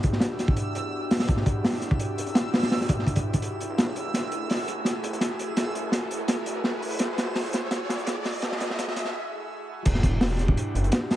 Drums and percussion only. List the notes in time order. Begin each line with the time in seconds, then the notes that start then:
0.03 kick, closed hi-hat
0.13 snare
0.20 snare, closed hi-hat
0.39 snare, closed hi-hat
0.48 kick
0.57 closed hi-hat
0.75 closed hi-hat
1.11 snare, open hi-hat
1.19 snare, open hi-hat
1.28 kick, closed hi-hat
1.37 snare
1.46 kick, closed hi-hat
1.64 snare, open hi-hat
1.73 snare
1.81 snare, closed hi-hat
1.91 kick
2.00 closed hi-hat
2.18 closed hi-hat
2.27 closed hi-hat
2.35 snare, closed hi-hat
2.54 snare, open hi-hat
2.63 snare, open hi-hat
2.71 snare, open hi-hat
2.81 snare
2.89 kick, closed hi-hat
2.99 snare
3.07 kick, closed hi-hat
3.16 kick, closed hi-hat
3.33 kick, closed hi-hat
3.42 closed hi-hat
3.61 closed hi-hat
3.78 snare, closed hi-hat
3.96 closed hi-hat
4.14 snare, closed hi-hat
4.32 closed hi-hat
4.50 snare, open hi-hat
4.68 closed hi-hat
4.85 snare, closed hi-hat
5.04 closed hi-hat
5.13 closed hi-hat
5.21 snare, closed hi-hat
5.39 closed hi-hat
5.57 snare, closed hi-hat
5.75 closed hi-hat
5.92 snare, closed hi-hat
6.11 closed hi-hat
6.28 snare, closed hi-hat
6.46 closed hi-hat
6.64 snare
6.82 open hi-hat
6.91 open hi-hat
6.99 snare, closed hi-hat
7.18 snare, closed hi-hat
7.35 snare, open hi-hat
7.53 snare, closed hi-hat
7.71 snare, closed hi-hat
7.89 snare, closed hi-hat
7.98 closed hi-hat
8.07 snare, closed hi-hat
8.24 snare, open hi-hat
8.34 open hi-hat
8.39 snare, closed hi-hat, open hi-hat
8.52 snare
8.60 snare, closed hi-hat
8.70 snare
8.79 snare, closed hi-hat
8.88 snare
8.96 snare, closed hi-hat
9.05 snare
9.85 kick, closed hi-hat, crash
9.95 snare
10.03 kick, closed hi-hat
10.21 snare, open hi-hat
10.31 snare
10.39 snare, closed hi-hat
10.48 kick
10.57 closed hi-hat
10.75 closed hi-hat
10.84 closed hi-hat
10.92 snare, closed hi-hat
11.10 snare, open hi-hat